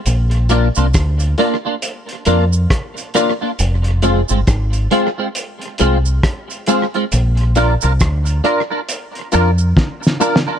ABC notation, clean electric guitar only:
X:1
M:4/4
L:1/16
Q:"Swing 16ths" 1/4=68
K:Bbmix
V:1 name="Clean electric guitar"
z2 [B,DF] [B,DF] z2 [B,DF] [B,DF] z2 [B,DF] z3 [B,DF] [B,DF] | z2 [A,CF] [A,CF] z2 [A,CF] [A,CF] z2 [A,CF] z3 [A,CF] [A,CF] | z2 [DFB] [DFB] z2 [DFB] [DFB] z2 [DFB] z3 [DFB] [DFB] |]